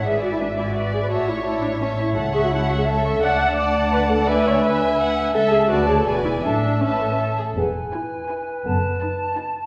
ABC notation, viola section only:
X:1
M:3/4
L:1/16
Q:1/4=169
K:A
V:1 name="Viola section"
G2 F E D2 E F3 G B | F2 E F E2 D E C2 E2 | A2 G F E2 F G A4 | f4 d4 B2 A2 |
B2 c2 B4 z4 | A2 G2 F2 G A G F E2 | D4 C4 z4 | [K:E] z4 E4 E4 |
z4 D4 D4 |]